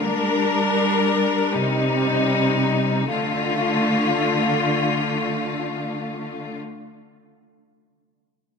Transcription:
0, 0, Header, 1, 3, 480
1, 0, Start_track
1, 0, Tempo, 500000
1, 8244, End_track
2, 0, Start_track
2, 0, Title_t, "Harp"
2, 0, Program_c, 0, 46
2, 0, Note_on_c, 0, 57, 63
2, 239, Note_off_c, 0, 57, 0
2, 8244, End_track
3, 0, Start_track
3, 0, Title_t, "String section"
3, 0, Program_c, 1, 48
3, 7, Note_on_c, 1, 55, 80
3, 7, Note_on_c, 1, 62, 76
3, 7, Note_on_c, 1, 70, 88
3, 1469, Note_off_c, 1, 55, 0
3, 1469, Note_off_c, 1, 62, 0
3, 1469, Note_off_c, 1, 70, 0
3, 1487, Note_on_c, 1, 48, 81
3, 1487, Note_on_c, 1, 55, 75
3, 1487, Note_on_c, 1, 63, 88
3, 2947, Note_off_c, 1, 48, 0
3, 2947, Note_off_c, 1, 55, 0
3, 2947, Note_off_c, 1, 63, 0
3, 2961, Note_on_c, 1, 50, 82
3, 2961, Note_on_c, 1, 57, 74
3, 2962, Note_on_c, 1, 65, 89
3, 6319, Note_off_c, 1, 50, 0
3, 6319, Note_off_c, 1, 57, 0
3, 6319, Note_off_c, 1, 65, 0
3, 8244, End_track
0, 0, End_of_file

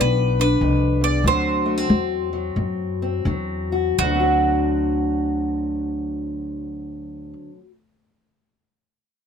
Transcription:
0, 0, Header, 1, 4, 480
1, 0, Start_track
1, 0, Tempo, 633580
1, 948, Time_signature, 4, 2, 24, 8
1, 1440, Tempo, 683371
1, 2400, Tempo, 739827
1, 6288, End_track
2, 0, Start_track
2, 0, Title_t, "Mandolin"
2, 0, Program_c, 0, 25
2, 5, Note_on_c, 0, 71, 88
2, 301, Note_off_c, 0, 71, 0
2, 310, Note_on_c, 0, 71, 89
2, 784, Note_off_c, 0, 71, 0
2, 787, Note_on_c, 0, 74, 83
2, 962, Note_off_c, 0, 74, 0
2, 966, Note_on_c, 0, 72, 83
2, 2381, Note_off_c, 0, 72, 0
2, 2866, Note_on_c, 0, 66, 88
2, 5034, Note_off_c, 0, 66, 0
2, 6288, End_track
3, 0, Start_track
3, 0, Title_t, "Steel-string acoustic guitar"
3, 0, Program_c, 1, 25
3, 0, Note_on_c, 1, 59, 62
3, 0, Note_on_c, 1, 62, 57
3, 0, Note_on_c, 1, 65, 70
3, 5, Note_on_c, 1, 50, 67
3, 296, Note_off_c, 1, 62, 0
3, 299, Note_on_c, 1, 62, 64
3, 436, Note_off_c, 1, 50, 0
3, 470, Note_on_c, 1, 41, 64
3, 762, Note_off_c, 1, 41, 0
3, 765, Note_on_c, 1, 40, 62
3, 928, Note_off_c, 1, 65, 0
3, 932, Note_off_c, 1, 59, 0
3, 946, Note_off_c, 1, 40, 0
3, 950, Note_on_c, 1, 38, 74
3, 955, Note_on_c, 1, 50, 64
3, 955, Note_on_c, 1, 54, 61
3, 963, Note_off_c, 1, 62, 0
3, 966, Note_on_c, 1, 60, 65
3, 968, Note_on_c, 1, 66, 69
3, 1251, Note_off_c, 1, 60, 0
3, 1254, Note_on_c, 1, 57, 62
3, 1345, Note_off_c, 1, 57, 0
3, 1345, Note_on_c, 1, 60, 49
3, 1405, Note_off_c, 1, 38, 0
3, 1429, Note_off_c, 1, 50, 0
3, 1438, Note_on_c, 1, 50, 67
3, 1732, Note_off_c, 1, 54, 0
3, 1740, Note_on_c, 1, 54, 55
3, 1875, Note_off_c, 1, 50, 0
3, 1908, Note_on_c, 1, 45, 61
3, 2216, Note_off_c, 1, 60, 0
3, 2228, Note_on_c, 1, 60, 58
3, 2362, Note_off_c, 1, 45, 0
3, 2389, Note_on_c, 1, 50, 64
3, 2390, Note_off_c, 1, 54, 0
3, 2398, Note_on_c, 1, 54, 60
3, 2687, Note_off_c, 1, 66, 0
3, 2695, Note_on_c, 1, 66, 61
3, 2831, Note_off_c, 1, 50, 0
3, 2850, Note_off_c, 1, 66, 0
3, 2855, Note_off_c, 1, 60, 0
3, 2872, Note_on_c, 1, 38, 62
3, 2902, Note_on_c, 1, 50, 62
3, 2927, Note_off_c, 1, 54, 0
3, 2935, Note_on_c, 1, 54, 58
3, 2969, Note_on_c, 1, 60, 55
3, 3003, Note_on_c, 1, 66, 55
3, 5143, Note_off_c, 1, 38, 0
3, 5173, Note_off_c, 1, 50, 0
3, 5206, Note_off_c, 1, 54, 0
3, 5240, Note_off_c, 1, 60, 0
3, 5274, Note_off_c, 1, 66, 0
3, 6288, End_track
4, 0, Start_track
4, 0, Title_t, "Upright bass"
4, 0, Program_c, 2, 32
4, 0, Note_on_c, 2, 35, 86
4, 452, Note_off_c, 2, 35, 0
4, 462, Note_on_c, 2, 36, 86
4, 930, Note_off_c, 2, 36, 0
4, 938, Note_on_c, 2, 38, 83
4, 1420, Note_off_c, 2, 38, 0
4, 1436, Note_on_c, 2, 40, 91
4, 1895, Note_off_c, 2, 40, 0
4, 1904, Note_on_c, 2, 42, 86
4, 2382, Note_off_c, 2, 42, 0
4, 2389, Note_on_c, 2, 40, 89
4, 2852, Note_off_c, 2, 40, 0
4, 2865, Note_on_c, 2, 38, 85
4, 5033, Note_off_c, 2, 38, 0
4, 6288, End_track
0, 0, End_of_file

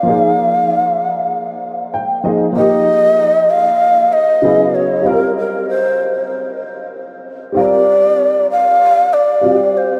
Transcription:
0, 0, Header, 1, 3, 480
1, 0, Start_track
1, 0, Tempo, 625000
1, 45, Time_signature, 4, 2, 24, 8
1, 7678, End_track
2, 0, Start_track
2, 0, Title_t, "Shakuhachi"
2, 0, Program_c, 0, 77
2, 0, Note_on_c, 0, 77, 93
2, 1487, Note_off_c, 0, 77, 0
2, 1970, Note_on_c, 0, 75, 116
2, 2688, Note_on_c, 0, 77, 105
2, 2700, Note_off_c, 0, 75, 0
2, 3169, Note_on_c, 0, 75, 94
2, 3181, Note_off_c, 0, 77, 0
2, 3647, Note_on_c, 0, 73, 84
2, 3659, Note_off_c, 0, 75, 0
2, 3892, Note_on_c, 0, 70, 96
2, 3903, Note_off_c, 0, 73, 0
2, 4126, Note_off_c, 0, 70, 0
2, 4131, Note_on_c, 0, 70, 81
2, 4351, Note_off_c, 0, 70, 0
2, 4370, Note_on_c, 0, 72, 84
2, 4817, Note_off_c, 0, 72, 0
2, 5824, Note_on_c, 0, 74, 109
2, 6504, Note_off_c, 0, 74, 0
2, 6538, Note_on_c, 0, 77, 116
2, 7014, Note_on_c, 0, 74, 94
2, 7025, Note_off_c, 0, 77, 0
2, 7505, Note_on_c, 0, 72, 87
2, 7516, Note_off_c, 0, 74, 0
2, 7678, Note_off_c, 0, 72, 0
2, 7678, End_track
3, 0, Start_track
3, 0, Title_t, "Upright piano"
3, 0, Program_c, 1, 0
3, 23, Note_on_c, 1, 53, 58
3, 37, Note_on_c, 1, 58, 55
3, 56, Note_on_c, 1, 63, 56
3, 72, Note_on_c, 1, 68, 67
3, 1488, Note_on_c, 1, 79, 67
3, 1683, Note_off_c, 1, 53, 0
3, 1690, Note_off_c, 1, 58, 0
3, 1700, Note_off_c, 1, 63, 0
3, 1708, Note_off_c, 1, 68, 0
3, 1710, Note_off_c, 1, 79, 0
3, 1717, Note_on_c, 1, 53, 52
3, 1723, Note_on_c, 1, 58, 48
3, 1726, Note_on_c, 1, 75, 64
3, 1732, Note_on_c, 1, 63, 49
3, 1741, Note_on_c, 1, 68, 58
3, 1927, Note_off_c, 1, 53, 0
3, 1939, Note_on_c, 1, 53, 60
3, 1947, Note_off_c, 1, 58, 0
3, 1949, Note_off_c, 1, 75, 0
3, 1958, Note_on_c, 1, 58, 55
3, 1963, Note_off_c, 1, 63, 0
3, 1973, Note_off_c, 1, 68, 0
3, 1974, Note_on_c, 1, 63, 55
3, 1991, Note_on_c, 1, 67, 68
3, 3363, Note_off_c, 1, 53, 0
3, 3373, Note_off_c, 1, 58, 0
3, 3381, Note_off_c, 1, 63, 0
3, 3389, Note_off_c, 1, 67, 0
3, 3393, Note_on_c, 1, 49, 63
3, 3400, Note_on_c, 1, 54, 56
3, 3407, Note_on_c, 1, 59, 56
3, 3411, Note_on_c, 1, 64, 57
3, 3416, Note_on_c, 1, 68, 68
3, 3852, Note_on_c, 1, 55, 59
3, 3869, Note_on_c, 1, 60, 56
3, 3879, Note_off_c, 1, 49, 0
3, 3882, Note_off_c, 1, 54, 0
3, 3886, Note_off_c, 1, 59, 0
3, 3886, Note_on_c, 1, 65, 55
3, 3888, Note_off_c, 1, 64, 0
3, 3890, Note_off_c, 1, 68, 0
3, 3904, Note_on_c, 1, 70, 67
3, 5758, Note_off_c, 1, 55, 0
3, 5766, Note_off_c, 1, 60, 0
3, 5774, Note_off_c, 1, 65, 0
3, 5777, Note_on_c, 1, 55, 61
3, 5784, Note_off_c, 1, 70, 0
3, 5794, Note_on_c, 1, 60, 57
3, 5810, Note_on_c, 1, 65, 60
3, 5824, Note_on_c, 1, 70, 67
3, 7202, Note_off_c, 1, 55, 0
3, 7211, Note_off_c, 1, 60, 0
3, 7219, Note_off_c, 1, 65, 0
3, 7226, Note_off_c, 1, 70, 0
3, 7227, Note_on_c, 1, 55, 49
3, 7237, Note_on_c, 1, 60, 43
3, 7242, Note_on_c, 1, 65, 44
3, 7251, Note_on_c, 1, 66, 43
3, 7303, Note_on_c, 1, 67, 53
3, 7307, Note_off_c, 1, 66, 0
3, 7678, Note_off_c, 1, 55, 0
3, 7678, Note_off_c, 1, 60, 0
3, 7678, Note_off_c, 1, 65, 0
3, 7678, Note_off_c, 1, 67, 0
3, 7678, End_track
0, 0, End_of_file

